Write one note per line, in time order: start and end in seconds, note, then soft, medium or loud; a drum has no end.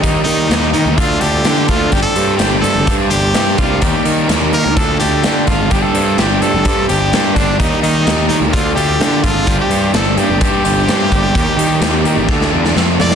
0.01 0.14 D#2 medium
0.01 0.49 D#3 medium
0.01 0.27 G3 medium
0.01 0.49 A#3 medium
0.01 0.23 D#4 medium
0.01 0.26 G4 medium
0.01 0.25 A#4 medium
0.01 kick medium
0.01 closed hi-hat medium
0.24 0.48 D#3 medium
0.24 0.69 D#4 medium
0.24 0.50 G4 medium
0.24 0.50 A#4 medium
0.24 closed hi-hat medium
0.28 0.49 G3 medium
0.49 0.72 D#2 medium
0.49 0.96 D#3 medium
0.49 0.75 G3 medium
0.49 0.96 A#3 medium
0.49 0.74 G4 medium
0.49 0.72 A#4 medium
0.49 snare medium
0.49 closed hi-hat medium
0.72 0.87 D#3 medium
0.72 0.97 G3 medium
0.72 0.98 D#4 medium
0.72 0.97 G4 medium
0.72 0.96 A#4 medium
0.72 closed hi-hat soft
0.85 0.97 D#2 medium
0.97 1.20 D2 medium
0.97 1.21 D3 medium
0.97 1.20 D4 medium
0.97 1.22 F4 medium
0.97 1.20 F4 medium
0.97 1.19 A4 medium
0.97 kick loud
0.97 closed hi-hat medium
1.20 1.43 D2 medium
1.20 1.43 D3 medium
1.20 1.44 D4 medium
1.20 1.44 F4 medium
1.20 1.69 G4 medium
1.20 1.45 A4 medium
1.20 closed hi-hat medium
1.44 1.91 D3 medium
1.44 1.67 D3 medium
1.44 1.69 D4 medium
1.44 1.68 F4 medium
1.44 1.67 A4 medium
1.44 snare loud
1.44 closed hi-hat medium
1.68 1.91 D2 medium
1.68 1.90 D4 medium
1.68 1.91 F4 medium
1.68 1.94 F4 medium
1.68 1.91 A4 medium
1.68 kick medium
1.68 closed hi-hat medium
1.91 2.04 G1 medium
1.91 2.38 G3 medium
1.91 2.16 D4 medium
1.91 2.15 G4 medium
1.91 2.02 G4 medium
1.91 2.14 C5 medium
1.91 kick medium
1.91 closed hi-hat medium
2.02 2.36 A4 medium
2.15 2.38 G2 medium
2.15 2.38 D4 medium
2.15 2.39 G4 medium
2.15 2.39 C5 medium
2.15 closed hi-hat medium
2.36 2.62 G1 medium
2.36 2.84 G3 medium
2.36 2.63 D4 medium
2.36 2.60 G4 medium
2.36 2.62 G4 medium
2.36 snare medium
2.36 closed hi-hat medium
2.40 2.61 C5 medium
2.61 2.77 G2 medium
2.61 2.85 D4 soft
2.61 2.86 G4 medium
2.61 2.96 A4 medium
2.61 2.87 C5 medium
2.61 closed hi-hat medium
2.75 2.86 G1 medium
2.85 3.09 G2 medium
2.85 3.10 G3 medium
2.85 3.10 D4 medium
2.85 3.09 G4 medium
2.85 3.09 C5 medium
2.85 kick medium
2.85 closed hi-hat medium
3.10 3.33 G1 medium
3.10 3.32 G3 medium
3.10 3.32 D4 medium
3.10 3.60 G4 medium
3.10 3.33 G4 medium
3.10 3.33 C5 medium
3.10 closed hi-hat medium
3.33 3.57 G2 medium
3.33 3.80 G3 medium
3.33 3.57 D4 medium
3.33 3.57 G4 medium
3.33 3.56 C5 medium
3.33 snare medium
3.33 closed hi-hat medium
3.57 3.81 C2 medium
3.57 3.81 D4 medium
3.57 3.83 F4 medium
3.57 3.80 G4 medium
3.57 3.80 C5 medium
3.57 kick medium
3.57 closed hi-hat medium
3.81 3.93 D#2 medium
3.81 4.27 D#3 medium
3.81 4.05 G3 medium
3.81 4.27 A#3 medium
3.81 4.05 G4 medium
3.81 4.04 G4 medium
3.81 4.03 A#4 medium
3.81 kick medium
3.81 closed hi-hat medium
4.04 4.28 D#3 medium
4.04 4.28 G3 medium
4.04 4.28 G4 medium
4.04 4.29 A#4 medium
4.04 closed hi-hat medium
4.28 4.51 D#2 medium
4.28 4.75 D#3 medium
4.28 4.53 G3 medium
4.28 4.75 A#3 medium
4.28 4.52 G4 medium
4.28 4.51 A#4 loud
4.28 snare medium
4.28 closed hi-hat medium
4.52 4.67 D#3 medium
4.52 4.76 G3 medium
4.52 4.75 G4 medium
4.52 4.75 A#4 medium
4.52 4.78 A#4 medium
4.52 closed hi-hat soft
4.65 4.76 D#2 medium
4.76 4.99 D2 medium
4.76 5.01 D3 medium
4.76 5.00 D4 medium
4.76 5.00 F4 medium
4.76 4.99 A4 medium
4.76 kick loud
4.76 closed hi-hat medium
4.99 5.23 D2 medium
4.99 5.23 D3 medium
4.99 5.23 D4 medium
4.99 5.24 F4 medium
4.99 5.48 G4 medium
4.99 5.24 A4 medium
4.99 closed hi-hat medium
5.24 5.70 D3 medium
5.24 5.46 D3 medium
5.24 5.47 D4 medium
5.24 5.47 F4 medium
5.24 5.45 A4 medium
5.24 snare loud
5.24 closed hi-hat medium
5.47 5.70 G#1 medium
5.47 5.70 D4 soft
5.47 5.73 F4 medium
5.47 5.70 F4 medium
5.47 5.69 A4 medium
5.47 kick medium
5.47 closed hi-hat medium
5.70 5.82 G1 medium
5.70 6.17 G3 medium
5.70 5.94 D4 medium
5.70 5.94 G4 medium
5.70 5.84 G4 medium
5.70 5.93 C5 medium
5.70 kick medium
5.70 closed hi-hat medium
5.82 6.20 A4 medium
5.94 6.16 G2 medium
5.94 6.17 D4 medium
5.94 6.18 G4 medium
5.94 6.18 C5 medium
5.94 closed hi-hat medium
6.18 6.40 G1 medium
6.18 6.64 G3 medium
6.18 6.42 D4 medium
6.18 6.43 G4 medium
6.18 6.41 G4 medium
6.18 6.40 C5 medium
6.18 snare loud
6.18 closed hi-hat medium
6.41 6.55 G2 medium
6.41 6.65 D4 medium
6.41 6.66 G4 medium
6.41 6.88 A4 medium
6.41 6.66 C5 medium
6.41 closed hi-hat medium
6.54 6.64 G1 medium
6.65 6.87 G2 medium
6.65 6.90 G3 medium
6.65 6.89 D4 medium
6.65 6.89 G4 medium
6.65 6.88 C5 medium
6.65 kick medium
6.65 closed hi-hat medium
6.88 7.11 G1 medium
6.88 7.12 G3 medium
6.88 7.12 D4 medium
6.88 7.37 G4 medium
6.88 7.13 G4 medium
6.88 7.14 C5 medium
6.88 closed hi-hat medium
7.13 7.35 G2 medium
7.13 7.58 G3 medium
7.13 7.37 D4 medium
7.13 7.36 G4 medium
7.13 7.35 C5 medium
7.13 snare medium
7.13 closed hi-hat medium
7.35 7.58 G1 medium
7.35 7.58 D4 medium
7.35 7.59 D4 medium
7.35 7.59 G4 medium
7.35 7.58 C5 medium
7.35 kick medium
7.35 closed hi-hat medium
7.59 7.71 D#2 medium
7.59 8.05 D#3 medium
7.59 7.83 G3 medium
7.59 8.05 A#3 medium
7.59 7.81 D#4 medium
7.59 7.82 G4 medium
7.59 7.81 A#4 medium
7.59 kick medium
7.59 closed hi-hat medium
7.82 8.05 D#3 medium
7.82 8.06 G3 soft
7.82 8.26 D#4 medium
7.82 8.06 G4 medium
7.82 8.06 A#4 medium
7.82 closed hi-hat medium
8.06 8.29 D#2 medium
8.06 8.52 D#3 medium
8.06 8.29 G3 medium
8.06 8.51 A#3 medium
8.06 8.29 G4 medium
8.06 8.28 A#4 medium
8.06 snare medium
8.06 closed hi-hat medium
8.28 8.43 D#3 medium
8.28 8.52 G3 soft
8.28 8.39 D#4 medium
8.28 8.52 G4 medium
8.28 8.51 A#4 medium
8.28 closed hi-hat medium
8.41 8.52 D#2 medium
8.52 8.75 D2 medium
8.52 8.77 D3 medium
8.52 8.77 D4 medium
8.52 8.74 F4 medium
8.52 8.76 F4 medium
8.52 8.75 A4 medium
8.52 kick loud
8.52 closed hi-hat medium
8.75 8.98 D2 medium
8.75 8.99 D3 soft
8.75 9.00 D4 medium
8.75 9.01 F4 medium
8.75 9.25 G4 medium
8.75 9.01 A4 medium
8.75 closed hi-hat medium
9.00 9.22 D3 medium
9.00 9.46 D3 medium
9.00 9.24 D4 medium
9.00 9.23 F4 medium
9.00 9.22 A4 medium
9.00 snare medium
9.00 closed hi-hat medium
9.23 9.46 G#1 medium
9.23 9.46 D4 medium
9.23 9.59 F4 medium
9.23 9.46 F4 medium
9.23 9.46 A4 medium
9.23 kick medium
9.23 closed hi-hat medium
9.47 9.58 G1 medium
9.47 9.92 G3 medium
9.47 9.71 D4 medium
9.47 9.70 G4 medium
9.47 9.69 C5 medium
9.47 kick medium
9.47 closed hi-hat medium
9.60 9.92 G4 medium
9.70 9.92 G2 medium
9.70 9.93 D4 medium
9.70 9.93 G4 medium
9.70 9.94 C5 medium
9.70 closed hi-hat medium
9.93 10.16 G1 medium
9.93 10.39 G3 medium
9.93 10.18 D4 medium
9.93 10.17 G4 medium
9.93 10.19 A4 medium
9.93 10.16 C5 loud
9.93 snare loud
9.93 closed hi-hat medium
10.17 10.30 G2 medium
10.17 10.40 D4 medium
10.17 10.40 G4 medium
10.17 10.41 G4 medium
10.17 10.42 C5 medium
10.17 closed hi-hat soft
10.29 10.40 G1 medium
10.41 10.63 G2 loud
10.41 10.65 G3 medium
10.41 10.64 D4 medium
10.41 12.71 G4 medium
10.41 10.64 G4 medium
10.41 10.63 C5 medium
10.41 kick medium
10.41 closed hi-hat medium
10.64 10.86 G1 medium
10.64 10.86 G3 medium
10.64 10.87 D4 medium
10.64 10.88 G4 medium
10.64 10.88 C5 medium
10.64 closed hi-hat medium
10.87 11.09 G2 medium
10.87 11.33 G3 medium
10.87 11.12 D4 medium
10.87 11.11 G4 medium
10.87 11.09 C5 medium
10.87 snare loud
10.87 closed hi-hat medium
11.11 11.33 G1 medium
11.11 11.34 D4 medium
11.11 11.34 G4 medium
11.11 11.33 C5 medium
11.11 kick medium
11.11 closed hi-hat medium
11.35 11.46 D#2 medium
11.35 11.80 D#3 medium
11.35 11.58 G3 medium
11.35 11.81 A#3 medium
11.35 11.58 G4 medium
11.35 11.57 A#4 medium
11.35 kick medium
11.35 closed hi-hat medium
11.57 11.79 D#3 medium
11.57 11.82 G3 medium
11.57 11.82 G4 medium
11.57 11.82 A#4 medium
11.57 closed hi-hat medium
11.81 12.03 D#2 medium
11.81 12.27 D#3 medium
11.81 12.06 G3 medium
11.81 12.27 A#3 medium
11.81 12.05 G4 loud
11.81 12.04 A#4 medium
11.81 snare medium
11.81 closed hi-hat medium
12.04 12.18 D#3 medium
12.04 12.28 G3 medium
12.04 12.28 G4 medium
12.04 12.27 A#4 medium
12.04 closed hi-hat soft
12.17 12.28 A1 medium
12.29 12.50 D2 medium
12.29 12.53 D3 medium
12.29 12.52 D4 medium
12.29 12.51 F4 medium
12.29 12.50 A4 medium
12.29 kick loud
12.29 snare medium
12.41 snare medium
12.51 12.74 E2 medium
12.51 12.75 D3 medium
12.51 12.74 D4 medium
12.51 12.74 F4 medium
12.51 12.74 A4 medium
12.65 snare medium
12.76 12.97 F2 medium
12.76 13.15 F3 medium
12.76 13.15 A3 medium
12.76 12.99 C4 medium
12.76 12.98 F4 medium
12.76 12.97 A4 medium
12.76 snare medium
12.98 13.15 F2 medium
12.98 13.15 C4 medium
12.98 13.15 F4 medium
12.98 13.15 A4 medium
12.98 13.15 D5 loud
12.98 snare medium
13.11 snare medium